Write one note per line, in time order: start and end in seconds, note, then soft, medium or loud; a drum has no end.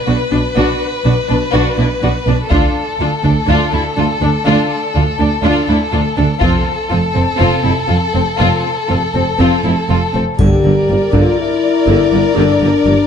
0.00 2.47 B4 soft
0.07 0.15 B1 soft
0.07 0.15 B2 soft
0.07 0.16 D4 soft
0.07 0.15 F#4 soft
0.31 0.40 B1 soft
0.31 0.39 B2 soft
0.31 0.39 D4 soft
0.56 0.65 B1 soft
0.56 0.64 B2 soft
0.56 0.79 D4 soft
0.56 0.79 F#4 soft
1.05 1.13 B1 soft
1.05 1.13 B2 soft
1.05 1.13 D4 soft
1.05 1.13 F#4 soft
1.29 1.38 B1 soft
1.29 1.38 B2 soft
1.29 1.37 D4 soft
1.29 1.38 D4 soft
1.53 1.62 B1 soft
1.53 1.62 B2 soft
1.53 1.76 D4 soft
1.53 1.76 F#4 soft
1.78 1.87 B1 soft
1.78 1.86 B2 soft
1.78 1.87 D4 soft
1.78 1.86 E4 soft
2.02 2.11 B1 soft
2.02 2.11 B2 soft
2.02 2.10 D4 soft
2.02 2.11 F#4 soft
2.26 2.34 B1 soft
2.26 2.34 B2 soft
2.26 2.35 D4 soft
2.26 2.36 D4 soft
2.51 2.59 D2 medium
2.51 2.59 D2 soft
2.51 2.74 D4 medium
2.51 2.74 F4 soft
2.51 6.38 A4 soft
2.51 taiko soft
2.99 3.07 D2 soft
2.99 3.08 D2 soft
2.99 3.08 D4 soft
2.99 3.08 F4 soft
3.23 3.32 D2 soft
3.23 3.31 D4 soft
3.23 3.32 D4 soft
3.23 taiko soft
3.47 3.55 D2 soft
3.47 3.56 D2 medium
3.47 3.71 D4 medium
3.47 3.71 F4 medium
3.72 3.80 D2 soft
3.72 3.81 D2 soft
3.72 3.81 D4 soft
3.72 3.82 E4 soft
3.97 4.05 D2 soft
3.97 4.05 D4 soft
3.97 4.06 F4 soft
4.21 4.29 D2 soft
4.21 4.30 D2 soft
4.21 4.30 D4 soft
4.46 4.54 D2 soft
4.46 4.54 D2 medium
4.46 4.69 D4 medium
4.46 4.69 F4 medium
4.94 5.03 D2 soft
4.94 5.02 D4 soft
4.94 5.03 F4 soft
5.19 5.27 D2 soft
5.19 5.28 D2 soft
5.19 5.27 D4 soft
5.19 5.28 D4 soft
5.43 5.52 D2 soft
5.43 5.52 D2 medium
5.43 5.66 D4 medium
5.43 5.67 F4 medium
5.68 5.76 D2 soft
5.68 5.77 D2 soft
5.68 5.76 D4 soft
5.68 5.77 E4 soft
5.92 6.01 D2 soft
5.92 6.01 D4 soft
5.92 6.00 F4 soft
6.16 6.26 D2 soft
6.16 6.24 D4 soft
6.16 6.26 D4 soft
6.41 6.51 F1 medium
6.41 6.50 F2 medium
6.41 6.64 C4 soft
6.41 6.64 F4 soft
6.41 10.16 A4 soft
6.41 taiko soft
6.89 7.00 F1 soft
6.89 6.99 F2 soft
6.89 6.98 C4 soft
6.89 6.97 F4 soft
7.14 7.23 F1 soft
7.14 7.23 F2 soft
7.14 7.22 C4 soft
7.14 7.23 C4 soft
7.38 7.48 F1 soft
7.38 7.48 F2 medium
7.38 7.62 C4 soft
7.38 7.62 F4 soft
7.63 7.73 F1 soft
7.63 7.73 F2 soft
7.63 7.71 C4 soft
7.63 7.72 E4 soft
7.88 7.97 F1 soft
7.88 7.97 F2 soft
7.88 7.96 C4 soft
7.88 7.96 F4 soft
8.14 8.22 F1 soft
8.14 8.22 F2 soft
8.14 8.22 C4 soft
8.14 8.23 C4 soft
8.39 8.48 F1 soft
8.39 8.47 F2 soft
8.39 8.63 C4 soft
8.39 8.62 F4 soft
8.89 8.98 F1 soft
8.89 8.97 F2 soft
8.89 8.98 C4 soft
8.89 8.97 F4 soft
9.14 9.23 F1 soft
9.14 9.22 F2 soft
9.14 9.23 C4 soft
9.39 9.47 F1 soft
9.39 9.47 F2 soft
9.39 9.63 C4 soft
9.39 9.63 F4 soft
9.64 9.73 F1 soft
9.64 9.72 F2 soft
9.64 9.73 C4 soft
9.64 9.73 E4 soft
9.89 9.97 F1 soft
9.89 9.97 F2 soft
9.89 9.98 C4 soft
9.89 9.98 F4 soft
10.14 10.23 F1 soft
10.14 10.23 F2 soft
10.14 10.22 C4 soft
10.14 10.23 C4 soft
10.39 10.49 G1 soft
10.39 10.48 G1 soft
10.39 11.09 G2 soft
10.39 10.48 G2 soft
10.39 10.62 D3 soft
10.39 11.10 G4 soft
10.39 13.07 A#4 soft
10.39 13.07 D5 soft
10.39 taiko medium
10.39 triangle soft
10.64 10.74 G1 soft
10.64 10.73 G1 soft
10.64 10.72 G2 soft
10.64 10.72 D3 soft
10.88 10.98 G1 soft
10.88 10.97 G2 soft
10.88 10.97 G3 soft
11.12 11.23 G1 soft
11.12 11.22 G1 soft
11.12 11.21 G2 medium
11.12 11.36 D3 soft
11.12 11.39 F4 medium
11.12 taiko soft
11.39 12.37 E4 medium
11.87 11.97 G1 soft
11.87 11.95 G1 soft
11.87 11.95 G2 soft
11.87 12.11 D3 soft
12.12 12.22 G1 soft
12.12 12.20 G1 soft
12.12 12.20 G2 soft
12.12 12.20 D3 soft
12.36 12.46 G1 soft
12.36 12.45 G1 soft
12.36 12.45 G2 soft
12.36 12.59 D3 soft
12.36 13.07 D4 medium
12.61 12.71 G1 soft
12.61 12.69 G1 soft
12.61 12.69 G2 soft
12.61 12.69 D3 soft
12.85 12.95 G1 soft
12.85 12.93 G1 soft
12.85 12.93 G2 soft
12.85 12.93 G3 soft